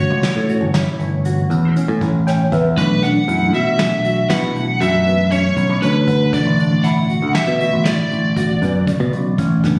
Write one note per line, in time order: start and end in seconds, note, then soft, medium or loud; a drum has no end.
0.00 2.74 B2 soft
0.00 2.74 E3 soft
0.00 2.74 A3 soft
0.00 2.74 C#4 medium
0.00 0.27 F#4 medium
0.00 1.73 C#5 medium
0.11 0.22 C#2 medium
0.23 snare medium
0.23 closed hi-hat medium
0.36 0.58 A2 medium
0.49 0.64 F#4 medium
0.49 closed hi-hat medium
0.61 0.84 G1 medium
0.74 1.03 E4 medium
0.74 snare loud
0.74 closed hi-hat medium
0.99 1.44 G1 medium
0.99 closed hi-hat medium
1.25 1.40 F#4 medium
1.25 closed hi-hat medium
1.50 1.73 E2 medium
1.50 1.65 B3 medium
1.50 closed hi-hat medium
1.76 2.05 C#4 medium
1.76 closed hi-hat medium
1.88 2.00 A2 medium
2.01 2.46 A1 medium
2.01 kick medium
2.01 closed hi-hat medium
2.27 2.41 C#4 medium
2.27 2.50 G5 medium
2.27 snare soft
2.27 closed hi-hat medium
2.52 2.75 E2 medium
2.52 2.67 B3 medium
2.52 2.76 E5 medium
2.52 kick medium
2.52 closed hi-hat medium
2.77 3.00 B1 medium
2.77 6.30 B2 medium
2.77 6.30 E3 soft
2.77 6.30 A3 medium
2.77 6.30 D4 medium
2.77 3.04 B4 medium
2.77 kick loud
2.77 closed hi-hat medium
3.03 3.14 B1 medium
3.03 3.18 D4 medium
3.03 3.50 F#5 loud
3.03 closed hi-hat medium
3.28 3.54 F#2 medium
3.28 3.43 E4 medium
3.28 closed hi-hat medium
3.54 3.76 B2 medium
3.54 3.82 F#4 medium
3.54 4.33 E5 medium
3.54 closed hi-hat medium
3.79 4.24 B1 medium
3.79 snare loud
3.79 closed hi-hat medium
4.04 4.19 F#4 medium
4.04 closed hi-hat medium
4.30 4.52 B2 medium
4.30 4.59 E4 medium
4.30 4.82 F#5 medium
4.30 snare loud
4.30 closed hi-hat medium
4.55 4.78 B1 medium
4.55 closed hi-hat medium
4.81 5.48 F#2 medium
4.81 4.95 F#4 medium
4.81 5.31 E5 medium
4.81 closed hi-hat medium
5.06 5.21 B3 medium
5.06 closed hi-hat medium
5.31 5.60 C#4 medium
5.31 5.79 C#5 medium
5.31 closed hi-hat medium
5.57 5.68 B1 medium
5.57 kick medium
5.57 closed hi-hat medium
5.69 5.81 B1 medium
5.82 6.39 D2 medium
5.82 5.97 C#4 medium
5.82 6.35 B4 medium
5.82 closed hi-hat medium
6.08 6.22 B3 medium
6.08 kick medium
6.08 closed hi-hat medium
6.33 9.59 B2 medium
6.33 9.60 D3 medium
6.33 9.60 E3 medium
6.33 9.60 A3 medium
6.33 6.86 D5 medium
6.33 kick loud
6.33 closed hi-hat medium
6.46 6.68 A1 medium
6.59 6.73 D4 medium
6.59 closed hi-hat medium
6.71 7.16 A1 medium
6.84 6.98 E4 medium
6.84 7.36 F#5 medium
6.84 closed hi-hat medium
7.10 7.38 F#4 medium
7.10 closed hi-hat medium
7.22 7.34 D2 medium
7.35 7.85 E5 medium
7.35 snare medium
7.35 closed hi-hat medium
7.47 7.70 B2 medium
7.60 7.75 F#4 medium
7.60 closed hi-hat medium
7.74 7.96 A1 medium
7.85 8.14 E4 medium
7.85 9.60 D5 medium
7.85 snare loud
7.85 closed hi-hat medium
8.11 8.57 A1 medium
8.11 closed hi-hat medium
8.36 8.51 F#4 medium
8.36 kick loud
8.36 closed hi-hat medium
8.62 8.84 F#2 medium
8.62 8.77 B3 medium
8.62 kick medium
8.62 closed hi-hat medium
8.87 9.16 C#3 medium
8.87 kick loud
8.87 closed hi-hat medium
9.00 9.11 B2 medium
9.13 9.36 B1 medium
9.13 closed hi-hat medium
9.38 9.61 A1 medium
9.38 9.53 C#4 medium
9.38 kick medium
9.38 closed hi-hat medium
9.64 9.79 F#1 medium
9.64 9.79 B2 medium
9.64 9.79 E3 soft
9.64 9.79 A3 soft
9.64 9.78 B3 medium
9.64 9.79 D4 medium
9.64 kick medium
9.64 snare soft
9.64 closed hi-hat medium